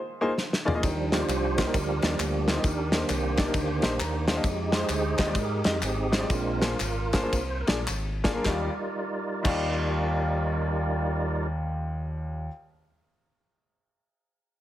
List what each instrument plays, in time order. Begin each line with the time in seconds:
0.21 upright piano A#3 D#4 F4 G#4 C5
0.38 snare
0.53 snare
0.65 upright piano A#3 D#4 F4 G#4 D5, floor tom
0.74 upright piano A#3 D#4 F4 G#4 D#5
0.81 fingered electric bass D#2, upright piano D#3, tonewheel organ F3 G3 D4, kick, ride, tambourine
1.12 upright piano A#3 D#4 F4 G4 D5, tonewheel organ F4 G4 C5, snare, ride, tambourine
1.28 fingered electric bass C2, clap, ride, tambourine
1.57 upright piano A#3 D#4 F4 G4 C5, kick, snare, clap, ride, tambourine
1.66 upright piano A#3 D#4 F4 G4 A#4
1.74 fingered electric bass D2, tonewheel organ D4 G4 A#4, kick, ride, tambourine
2.02 fingered electric bass D#2, upright piano A#3 D#4 F4 G4 D5, snare, ride, tambourine
2.19 fingered electric bass D2, tonewheel organ A#3 D4 G4, clap, ride, tambourine
2.48 upright piano A#3 D#4 F4 G4 C5, snare, ride, tambourine
2.55 upright piano A#3 D#4 F4 G4 D#5
2.64 fingered electric bass D#2, upright piano D#3, tonewheel organ D4 G4 A#4, kick, ride, tambourine
2.92 tonewheel organ D#3 A#3 D4, upright piano A#3 D4 D#4 G4 C5, snare, ride, tambourine
3.09 fingered electric bass C2, tonewheel organ G4 C5, clap, ride, tambourine
3.37 upright piano A#3 D4 D#4 G4 D5, kick, snare, clap, ride, tambourine
3.46 upright piano A#3 D4 D#4 G4 A#4
3.54 fingered electric bass D2, kick, ride, tambourine
3.82 fingered electric bass A#1, upright piano A#3 D4 D#4 G4 C5, snare, ride, tambourine
3.99 fingered electric bass D#2, tonewheel organ D#3 A#3 D4, upright piano A#5, clap, ride, tambourine
4.28 upright piano A#3 D4 D#4 G4 C5 F5, snare, ride, tambourine
4.36 upright piano A#3 D4 D#4 G4 D#5
4.44 fingered electric bass F2, tonewheel organ G#3 D#4 G4, kick, ride, tambourine
4.72 upright piano G#3 D#4 F4 G4 C5, tonewheel organ D#4 G#4, snare, ride, tambourine
4.77 tonewheel organ C5
4.89 fingered electric bass D2, clap, ride, tambourine
5.18 fingered electric bass D#2, upright piano G#3 D#4 F4 G4 D#5, kick, snare, clap, ride, tambourine
5.26 upright piano G#3 D#4 F4 G4 D5
5.35 fingered electric bass G#2, tonewheel organ D#4 G4, kick, ride, tambourine
5.39 tonewheel organ A#4
5.64 fingered electric bass F2, tonewheel organ G3 G#3 D#4, upright piano G#3 D#4 F4 G4 D#5, snare, ride, tambourine
5.82 fingered electric bass G#1, tonewheel organ C4 D#4 G#4, clap, ride, tambourine
6.12 upright piano G#3 D#4 F4 G4 C5, snare, ride, tambourine
6.19 upright piano G#3 D#4 F4 G4 D5
6.30 fingered electric bass A#1, upright piano A#2, tonewheel organ G#3 C4 D4 F4 A#4, kick, ride, tambourine
6.62 upright piano A#3 D4 F4 G#4 C5, snare, ride, tambourine
6.80 fingered electric bass G#1, clap, ride, tambourine
7.13 upright piano A#3 D4 F4 G#4 C5, kick, snare, clap, ride, tambourine
7.22 upright piano A#3 D4 F4 G#4 C5
7.33 fingered electric bass C2, kick, ride, tambourine
7.48 tonewheel organ C5
7.61 tonewheel organ A#4
7.67 fingered electric bass A#1, upright piano A#3 D4 F4 G#4 D5, snare, ride, tambourine
7.72 tonewheel organ G#4
7.79 tonewheel organ A#4
7.87 fingered electric bass G#1, clap, ride, tambourine
8.24 upright piano A#3 D4 F4 G#4 D5, kick, snare, ride, tambourine
8.33 upright piano A#3 D4 F4 G#4 A#4
8.42 upright piano D#2 G3 D#4 F4, fingered electric bass D#2, tonewheel organ G3 D#4 F4 A#4 D5, kick, snare, clap
8.48 upright piano D5
9.43 upright piano D#2 G3 D#4 F4, fingered electric bass D#2, kick, clap, crash
9.47 upright piano D5